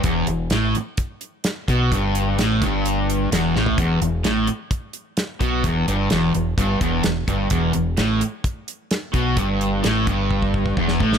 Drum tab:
HH |x-x-x-x-x-x-x-x-|x-x-x-x-x-x-x---|x-x-x-x-x-x-x-x-|x-x-x-x-x-x-x-x-|
SD |----o-------o---|----o-------o-o-|----o-------o---|----o-------o---|
FT |----------------|---------------o|----------------|----------------|
BD |o-------o-----o-|o-----o---------|o-------o-----o-|o-------o-o---o-|

HH |x-x-x-x-x-x-x-x-|x-x-x-x---------|
SD |----o-------o---|----o--------o-o|
FT |----------------|----------------|
BD |o-------o-----o-|o-----o-ooooo-o-|